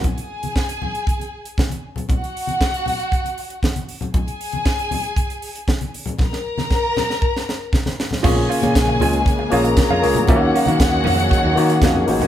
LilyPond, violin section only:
\new Staff \with { instrumentName = "Violin section" } { \time 4/4 \key bes \minor \tempo 4 = 117 <aes' aes''>2.~ <aes' aes''>8 r8 | <ges' ges''>2.~ <ges' ges''>8 r8 | <aes' aes''>2.~ <aes' aes''>8 r8 | <bes' bes''>2.~ <bes' bes''>8 r8 |
<aes' aes''>2~ <aes' aes''>8 <bes' bes''>4. | <ges' ges''>1 | }